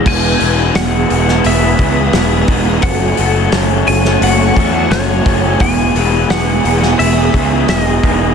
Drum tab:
CC |x---------------|----------------|----------------|
HH |--o-o-o-o-o-o-o-|o-o-o-o-o-o-o-o-|o-o-o-o-o-o-o-o-|
SD |----o--o----o---|----o--o----o---|----o--o----o---|
BD |o---------o---o-|o---------o---o-|o---------o---o-|